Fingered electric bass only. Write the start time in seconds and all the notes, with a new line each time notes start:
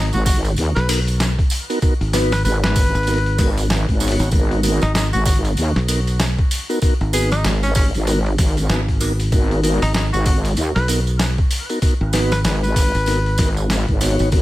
Already playing: G#1
0.76 B1
2.01 G#1
2.95 G#1
4.20 G#1
4.82 G#1
5.76 B1
7.01 G#1
8.69 G#1
9.82 G#1
10.76 B1
12.01 G#1
12.95 G#1
14.20 G#1